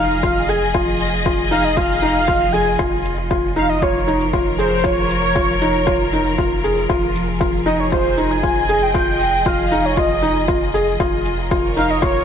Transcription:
Already playing: analog synth bass F1, string section F3 F4 G#4, felt piano D#4, soft synth lead F5
0.02 string section D#5
0.11 shaker
0.23 felt piano F4, kick, shaker
0.49 felt piano G#4, soft synth lead G#5, shaker
0.74 felt piano F4, kick, shaker
1.00 shaker
1.26 felt piano F4, kick, shaker
1.51 felt piano D#4, soft synth lead F5, shaker
1.64 soft synth lead D#5
1.77 felt piano F4, soft synth lead F5, kick, shaker
2.02 felt piano D#4, shaker
2.16 shaker
2.28 felt piano F4, kick, shaker
2.52 felt piano G#4, soft synth lead G#5, shaker
2.67 shaker
2.79 analog synth bass F1, felt piano F4, kick, shaker
3.05 shaker
3.31 felt piano F4, kick, shaker
3.56 felt piano D#4, soft synth lead F5, shaker
3.69 soft synth lead D#5
3.76 string section A#4
3.82 felt piano F4, soft synth lead C#5, kick, shaker
4.07 felt piano D#4, shaker
4.20 string section C#5, shaker
4.33 felt piano F4, kick, shaker
4.59 felt piano G#4, soft synth lead C5, shaker
4.84 felt piano F4, soft synth lead C#5, kick, shaker
5.10 shaker
5.36 felt piano F4, kick, shaker
5.61 felt piano D#4, shaker
5.87 felt piano F4, kick, shaker
6.13 felt piano D#4, shaker
6.26 shaker
6.38 felt piano F4, kick, shaker
6.64 felt piano G#4, shaker
6.77 shaker
6.89 analog synth bass F1, felt piano F4, kick, shaker
7.15 string section G#4, shaker
7.41 felt piano F4, kick, shaker
7.66 felt piano D#4, soft synth lead D#5, shaker
7.80 soft synth lead C#5
7.85 string section D#5
7.92 felt piano F4, soft synth lead C5, kick, shaker
8.18 felt piano D#4, shaker
8.31 soft synth lead G#5, shaker
8.43 felt piano F4, kick, shaker
8.69 felt piano G#4, shaker
8.83 soft synth lead G5
8.94 felt piano F4, kick, shaker
9.20 shaker
9.46 felt piano F4, soft synth lead F5, kick, shaker
9.72 felt piano D#4, shaker
9.85 soft synth lead C#5
9.97 felt piano F4, soft synth lead D#5, kick, shaker
10.22 felt piano D#4, shaker
10.36 shaker
10.48 felt piano F4, kick, shaker
10.74 felt piano G#4, shaker
10.87 shaker
11.00 analog synth bass F1, felt piano F4, kick, shaker
11.26 shaker
11.35 string section A#4
11.50 felt piano F4, string section C#5, kick, shaker
11.77 felt piano D#4, soft synth lead F5, shaker
11.90 soft synth lead D#5
12.02 felt piano F4, soft synth lead C#5, kick, shaker

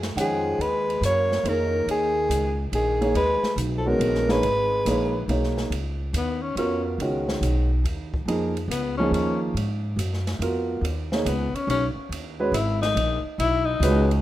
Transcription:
Already playing: upright bass F#2
0.03 snare, ride
0.16 upright bass F2, grand piano D#3 G#3 C#4 F#5, tenor saxophone F3, hi-hat pedal, ride
0.20 soprano saxophone G#4
0.58 upright bass D#2, tenor saxophone G#3, soprano saxophone B4, ride
0.90 ride
1.01 upright bass F#2, tenor saxophone A#3, hi-hat pedal, ride
1.05 soprano saxophone C#5
1.32 snare
1.43 upright bass F2, grand piano A#3 D#4 G#4 C#5, ride
1.48 tenor saxophone D#3, soprano saxophone A#4
1.86 upright bass D#2, tenor saxophone D#3, ride
1.91 soprano saxophone G#4
2.29 upright bass C#2, hi-hat pedal, ride
2.72 upright bass A#1, tenor saxophone D#3, soprano saxophone G#4, ride
3.01 grand piano A#3 D#4 G#4 C#5, ride
3.15 upright bass D#2, tenor saxophone G#3, soprano saxophone B4, ride
3.43 muted upright bass stroke, snare
3.56 upright bass B1, hi-hat pedal, ride
3.76 tenor saxophone F3, soprano saxophone A4
3.86 tenor saxophone D#3, grand piano G#3 B3 C#4 F#4, soprano saxophone A#4
3.99 upright bass A#1, ride
4.15 snare
4.28 tenor saxophone G#3, grand piano A#3 D#4 G#4 C#5, soprano saxophone B4, snare
4.42 upright bass G#1, ride
4.85 upright bass A#1, grand piano A#3 D#4 G#4 C#5, hi-hat pedal, ride
5.28 upright bass B1, grand piano A#3 D#4 G#4 C#5, ride
5.44 snare
5.57 snare
5.70 upright bass C#2, ride
6.13 upright bass D#2, tenor saxophone B3, hi-hat pedal, ride
6.42 tenor saxophone C#4
6.56 upright bass F2, grand piano B3 F4 F#4 A#4, tenor saxophone C#4, ride
6.98 upright bass C#2, grand piano D#3 G#3 C#4 F#4, ride
7.28 snare
7.41 upright bass B1, hi-hat pedal, ride
7.84 upright bass D#2, ride
8.14 kick
8.26 upright bass F2, grand piano F3 A#3 D#4 G#4, ride
8.57 ride
8.68 upright bass C#2, tenor saxophone B3, hi-hat pedal, ride
8.97 grand piano F3 A#3 D#4 G#4, tenor saxophone C#4
9.11 upright bass D#2, tenor saxophone C#4, ride
9.54 upright bass G#2, ride
9.96 upright bass F#2, hi-hat pedal, ride
10.13 snare
10.27 snare, ride
10.39 upright bass F2, grand piano B3 F4 F#4 A#4, ride
10.81 upright bass D#2, ride
11.12 grand piano A#3 D#4 G#4 C#5, snare
11.25 upright bass C#2, tenor saxophone B3, hi-hat pedal, ride
11.53 tenor saxophone C#4, muted upright bass stroke, ride
11.67 upright bass B1, tenor saxophone C#4, ride
11.95 muted upright bass stroke
12.09 upright bass D#2, ride
12.40 grand piano G#3 C#4 F#4 B4
12.52 upright bass G#1, tenor saxophone E4, hi-hat pedal, ride
12.82 tenor saxophone D#4, snare, ride
12.95 upright bass A#1, ride
13.23 muted upright bass stroke
13.38 upright bass B1, tenor saxophone E4, ride
13.65 tenor saxophone D#4
13.80 upright bass C#2, grand piano G#3 C#4 F#4 B4, hi-hat pedal, ride
14.11 ride

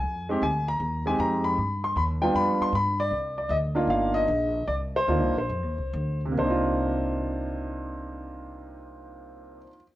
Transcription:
Already playing: grand piano G#5
0.03 upright bass F2
0.29 grand piano G#3 C4 D#4 G4
0.42 upright bass D2, grand piano G#5
0.68 grand piano A#5
0.80 upright bass D#2
1.06 grand piano G#3 C4 D#4 G4 G#5
1.19 upright bass F2, grand piano A#5
1.44 grand piano B5
1.58 upright bass G2
1.84 grand piano C6
1.96 upright bass D#2, grand piano B5
2.21 grand piano G3 B3 D4 F4 G5
2.34 upright bass F2, grand piano B5
2.60 grand piano C6, muted upright bass stroke
2.73 upright bass G2, grand piano B5
3.00 grand piano D5
3.11 upright bass C2
3.38 grand piano D5
3.49 upright bass D2, grand piano D#5
3.75 grand piano A#3 D4 D#4 F4 F5
3.87 upright bass G1, grand piano F5
4.14 grand piano D#5
4.28 upright bass A#1
4.67 upright bass C2, grand piano D5
4.96 grand piano C5
5.08 upright bass D2, grand piano A#3 D4 D#4 F4
5.21 upright bass C2
5.35 upright bass A#1, grand piano C5
5.49 upright bass F2
5.62 upright bass D#2
5.78 upright bass C2
5.93 upright bass D2
6.26 grand piano C3
6.32 grand piano A#3
6.38 upright bass C2, grand piano D4 C5
6.45 grand piano D#4
6.50 grand piano F4

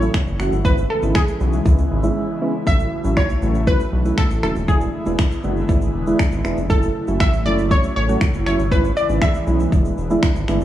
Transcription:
Already playing: analog synth pad C#3 E3 F#3 A3 E4, synth pluck C#5
0.01 synth keys F#3 A3 C#4 E4, shaker
0.14 finger snap, kick, shaker
0.27 analog synth bass F#1, shaker
0.39 analog synth bass F#1, synth keys F#3 A3 C#4 F#4, finger snap, shaker
0.52 analog synth bass G1, shaker
0.65 analog synth bass G#1, synth keys G#3 B3 C#4 E4, analog synth pad G#3 B3 E4, synth pluck B4, kick, shaker
0.78 shaker
0.90 synth pluck A4
1.02 analog synth bass G#1, synth keys G#3 B3 C#4 E4, shaker
1.15 synth pluck G#4, finger snap, kick, shaker
1.28 shaker
1.40 analog synth bass B1, synth keys G#3 B3 C#4 F#4, shaker
1.53 shaker
1.65 analog synth bass C#2, synth keys G#3 B3 C#4 E4, kick, shaker
1.78 shaker
1.91 analog synth bass G#1
2.03 synth keys G#3 B3 C#4 E4, shaker
2.41 synth keys G#3 B3 C#4 E4
2.66 analog synth bass A1, synth keys F#3 A3 C#4 E4, analog synth pad F#3 A3, synth pluck E5, kick, shaker
2.79 shaker
3.04 analog synth bass A1, synth keys F#3 A3 C#4 E4, shaker
3.17 analog synth bass B1, synth pluck C#5, finger snap, kick, shaker
3.29 shaker
3.42 analog synth bass A1, synth keys F#3 A3 C#4 F#4, shaker
3.55 shaker
3.67 synth keys F#3 A3 C#4 E4, synth pluck B4, kick, shaker
3.80 shaker
3.93 analog synth bass B1
4.05 synth keys F#3 A3 C#4 E4, shaker
4.18 synth pluck A4, finger snap, kick, shaker
4.30 analog synth bass A1, shaker
4.43 analog synth bass E1, synth keys F#3 A3 C#4 E4, synth pluck A4, finger snap, shaker
4.55 analog synth bass D#1, shaker
4.68 analog synth bass E1, analog synth pad D3 G#3 B3 E4, synth keys G#3 B3 D4 E4, synth pluck G#4, kick, shaker
4.81 shaker
5.06 analog synth bass E1, synth keys G#3 B3 D4 E4, shaker
5.18 finger snap, kick, shaker
5.31 shaker
5.44 analog synth bass F#1, synth keys G#3 B3 D4 F#4, shaker
5.56 shaker
5.69 analog synth bass G#1, synth keys G#3 B3 D4 E4, kick, shaker
5.82 shaker
5.94 analog synth bass E1
6.07 synth keys G#3 B3 D4 E4, shaker
6.19 finger snap, kick, shaker
6.32 analog synth bass G#1, shaker
6.44 analog synth bass E1, synth keys G#3 B3 D4 E4, finger snap, shaker
6.57 analog synth bass F1, shaker
6.70 analog synth bass F#1, analog synth pad C#3 F#3 A3 E4, synth keys F#3 A3 C#4 E4, synth pluck A4, kick, shaker
6.82 shaker
7.07 analog synth bass F#1, synth keys F#3 A3 C#4 E4, shaker
7.20 analog synth bass A1, synth pluck E5, finger snap, kick, shaker
7.33 shaker
7.45 analog synth bass F#1, synth keys F#3 A3 C#4 E4, synth pluck D5, shaker
7.58 shaker
7.70 synth keys F#3 A3 C#4 E4, synth pluck C#5, kick, shaker
7.83 shaker
7.96 analog synth bass A1, synth pluck C#5
8.08 synth keys F#3 A3 C#4 F#4, shaker
8.21 finger snap, kick, shaker
8.34 analog synth bass F#1, shaker
8.46 analog synth bass F#1, synth keys F#3 A3 C#4 E4, synth pluck C#5, finger snap, shaker
8.59 analog synth bass G1, shaker
8.71 analog synth bass G#1, analog synth pad E3 G#3 B3, synth keys G#3 B3 C#4 E4, synth pluck B4, kick, shaker
8.84 shaker
8.97 synth pluck D5, shaker
9.09 analog synth bass G#1, synth keys G#3 B3 C#4 E4, shaker
9.22 synth pluck E5, finger snap, kick, shaker
9.35 shaker
9.47 analog synth bass B1, synth keys G#3 B3 C#4 E4, shaker
9.60 shaker
9.72 analog synth bass E1, analog synth pad D3 E3, synth keys G#3 B3 D4 E4, kick, shaker
9.85 shaker
9.98 analog synth bass E1, shaker
10.10 synth keys G#3 B3 D4 E4, shaker
10.23 finger snap, kick, shaker
10.36 analog synth bass G#1, shaker
10.48 analog synth bass G1, synth keys G#3 B3 D4 E4, finger snap, shaker
10.61 analog synth bass G#1, shaker

